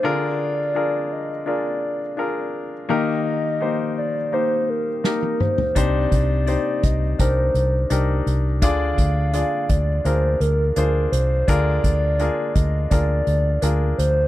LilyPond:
<<
  \new Staff \with { instrumentName = "Soft synth lead" } { \time 4/4 \key bes \mixolydian \tempo 4 = 84 d''4. ees''8 d''4. r8 | ees''4. d''8 c''8 bes'8 bes'8 c''8 | d''4. ees''8 c''4. r8 | f''4. d''8 c''8 bes'8 bes'8 c''8 |
d''4. ees''8 d''4 bes'8 c''8 | }
  \new Staff \with { instrumentName = "Grand piano" } { \time 4/4 \key bes \mixolydian <d' f' aes' bes'>8. r16 <d' f' aes' bes'>8. r16 <d' f' aes' bes'>8. r16 <d' f' aes' bes'>8. r16 | <bes ees' g' bes'>8. r16 <bes ees' g' c''>8. r16 <bes ees' g' c''>8. r16 <bes ees' g' bes'>8. r16 | <d' ees' g' c''>8. r16 <ees' g' c'' d''>8. r16 <d' ees' g' bes'>8. r16 <d' ees' g' bes'>8. r16 | <d' f' aes' d''>8. r16 <d' f' aes' d''>8. r16 <d' f' aes' bes'>8. r16 <d' f' aes' c''>8. r16 |
<d' f' aes' bes'>8. r16 <d' f' aes' bes'>8. r16 <d' f' aes' bes'>8. r16 <d' f' aes' bes'>8. r16 | }
  \new Staff \with { instrumentName = "Grand piano" } { \clef bass \time 4/4 \key bes \mixolydian d4. r2 r8 | ees4. r2 r8 | c4. r2 r8 | d4. r2 r8 |
d4. r2 r8 | }
  \new Staff \with { instrumentName = "Fingered electric bass" } { \clef bass \time 4/4 \key bes \mixolydian r1 | r1 | c,8 c,8. r16 c,8 c,8 c,8 c,8 c,8 | d,8 d,8. r16 d,8 d,8 d,8 d,8 c,8 |
d,8 d,8. r16 d,8 d,8 d,8 d,8 d,8 | }
  \new DrumStaff \with { instrumentName = "Drums" } \drummode { \time 4/4 r4 r4 r4 r4 | r4 r4 r4 sn16 tommh16 toml16 tomfh16 | <hh bd>8 <hh bd>8 hh8 <hh bd>8 <hh bd>8 hh8 hh8 hh8 | <hh bd>8 <hh bd>8 hh8 <hh bd>8 hh8 hh8 hh8 hh8 |
<hh bd>8 <hh bd>8 hh8 <hh bd>8 <hh bd>8 hh8 hh8 hh8 | }
>>